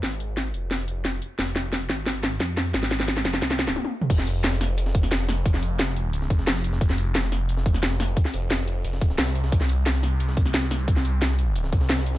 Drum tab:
CC |----------------|----------------|----------------|x---------------|
HH |xxx-x-x-x-x-x-x-|x-x-x-x-x-x-x-x-|xxx-x-x-x-x-----|x-x-x-x-x-x-x-xx|
SD |o---o---o---o---|o-o-o-o-o-o-o-o-|oooooooooooo----|-o--ooo--o-oooo-|
T1 |----------------|----------------|------------oo--|----------------|
T2 |----------------|----------------|---------------o|----------------|
BD |----------------|----------------|----------------|o---------o-----|

CC |----------------|----------------|----------------|----------------|
HH |x-x-x-x-x-x-x-x-|x-x-x-x-x-x-x-xx|x-x-x-x-x-x-x-x-|x-x-x-x-x-x-x-xx|
SD |-o--oo---o-ooo-o|-o--ooo--o-oooo-|-o--oo---o-ooo-o|-o--ooo--o-oooo-|
T1 |----------------|----------------|----------------|----------------|
T2 |----------------|----------------|----------------|----------------|
BD |o---------o-----|o---------o-----|o---------o-----|o---------o-----|

CC |----------------|
HH |x-x-x-x-x-x-x-x-|
SD |-o--oo---o-ooo-o|
T1 |----------------|
T2 |----------------|
BD |o---------o-----|